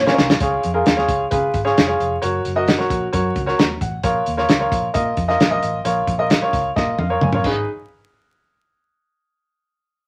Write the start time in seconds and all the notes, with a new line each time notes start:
Already playing: A#2 C#5
0.06 C#4 F4 A#4 C#5, snare
0.18 C2, snare
0.30 snare
0.40 C#2 F4 G#4 C#5, kick, closed hi-hat
0.63 F2, closed hi-hat
0.74 F4 G#4 A#4
0.86 D#2, snare, closed hi-hat
0.96 F4 G#4 C#5, snare
1.08 C#2, kick, closed hi-hat
1.31 C#3 F4 G#4 B4, kick, closed hi-hat
1.54 G#1, kick, closed hi-hat
1.65 F4 G#4 C#5, snare
1.78 F1, snare, closed hi-hat
1.87 F4 G#4 C#5
2.00 F1, closed hi-hat
2.22 F#1 F#4 A#4 C#5, closed hi-hat
2.45 F#1, closed hi-hat
2.56 F#4 A#4 D#5
2.68 snare, closed hi-hat
2.78 F#4 A#4 C#5, snare
2.90 A#1, kick, closed hi-hat
3.12 F#2 F#4 A#4 C#5, kick, closed hi-hat
3.36 C#2, kick, closed hi-hat
3.46 F#4 A#4 C#5, snare
3.58 D#2 A#5, snare, closed hi-hat
3.81 A1 F#5, kick, closed hi-hat
4.03 A#1 F4 A#4 C#5, kick, closed hi-hat
4.26 D#2, closed hi-hat
4.37 F4 A#4 C#5, snare
4.49 C#2, snare, closed hi-hat
4.59 F4 A#4 C#5
4.72 A#1, kick, closed hi-hat
4.94 A#2 F4 A#4 D#5, kick, closed hi-hat
5.17 F2, kick, closed hi-hat
5.28 F4 A#4 D#5, snare
5.40 A#1, snare, closed hi-hat
5.51 F4 A#4 D#5
5.62 A1, closed hi-hat
5.84 A#1 F4 A#4 C#5, closed hi-hat
6.07 A#1, kick, closed hi-hat
6.18 F4 A#4 D#5
6.30 snare, closed hi-hat
6.41 F4 A#4 C#5
6.53 C#2, kick, closed hi-hat
6.76 A#2 F4 A#4 D#5, kick, snare
6.99 F2 F5, high tom
7.10 F4 A#4 C#5
7.21 F#2 G#5, mid tom
7.32 F4 A#4 C#5, mid tom
7.44 G#1 D#4 G#4 B4, kick, crash